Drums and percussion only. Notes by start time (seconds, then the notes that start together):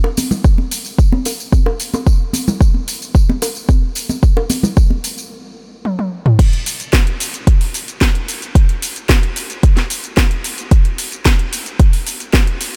0.04 high bongo
0.17 open hi-hat, tambourine, high conga, shaker
0.31 tambourine, low conga, shaker
0.44 kick, tambourine, shaker
0.58 high conga
0.71 open hi-hat, tambourine, shaker
0.85 tambourine, shaker
0.99 kick, tambourine, shaker
1.12 high conga
1.25 open hi-hat, tambourine, high bongo, shaker
1.40 tambourine, shaker
1.52 kick, tambourine, high conga, shaker
1.66 high bongo
1.80 open hi-hat, tambourine, shaker
1.93 tambourine, high bongo, high conga, shaker
2.06 kick, tambourine, shaker
2.33 open hi-hat, tambourine, high conga, shaker
2.47 tambourine, low conga, shaker
2.61 kick, tambourine, shaker
2.74 high conga
2.88 open hi-hat, tambourine, shaker
3.02 tambourine, shaker
3.15 kick, tambourine, shaker
3.29 high conga
3.42 open hi-hat, tambourine, high bongo, shaker
3.55 tambourine, shaker
3.68 kick, tambourine, high conga, shaker
3.95 open hi-hat, tambourine, shaker
4.09 tambourine, high conga, shaker
4.23 kick, tambourine, shaker
4.37 high bongo
4.49 open hi-hat, tambourine, high conga, shaker
4.63 tambourine, low conga, shaker
4.77 kick, tambourine, shaker
4.90 high conga
5.04 open hi-hat, tambourine, shaker
5.18 tambourine, shaker
5.85 high tom
5.99 high tom
6.26 mid tom
6.39 kick, closed hi-hat, crash, shaker
6.53 closed hi-hat
6.66 open hi-hat, shaker
6.80 closed hi-hat, shaker
6.93 kick, snare, closed hi-hat, shaker
7.07 closed hi-hat
7.20 open hi-hat, shaker
7.34 closed hi-hat, shaker
7.47 kick, closed hi-hat, shaker
7.61 open hi-hat
7.74 open hi-hat, shaker
7.88 closed hi-hat, shaker
8.01 kick, snare, closed hi-hat, shaker
8.15 closed hi-hat
8.28 open hi-hat, shaker
8.42 closed hi-hat, shaker
8.55 kick, closed hi-hat, shaker
8.69 closed hi-hat
8.82 open hi-hat, shaker
8.96 closed hi-hat, shaker
9.09 kick, snare, closed hi-hat, shaker
9.23 closed hi-hat
9.36 open hi-hat, shaker
9.50 closed hi-hat, shaker
9.63 kick, closed hi-hat, shaker
9.77 snare, closed hi-hat
9.90 open hi-hat, shaker
10.04 closed hi-hat, shaker
10.17 kick, snare, closed hi-hat, shaker
10.31 closed hi-hat
10.44 open hi-hat, shaker
10.58 closed hi-hat, shaker
10.71 kick, closed hi-hat, shaker
10.85 closed hi-hat
10.98 open hi-hat, shaker
11.12 closed hi-hat, shaker
11.25 kick, snare, closed hi-hat, shaker
11.39 closed hi-hat
11.53 open hi-hat, shaker
11.66 closed hi-hat, shaker
11.80 kick, closed hi-hat, shaker
11.93 open hi-hat
12.07 open hi-hat, shaker
12.20 closed hi-hat, shaker
12.33 kick, snare, closed hi-hat, shaker
12.47 closed hi-hat
12.61 open hi-hat, shaker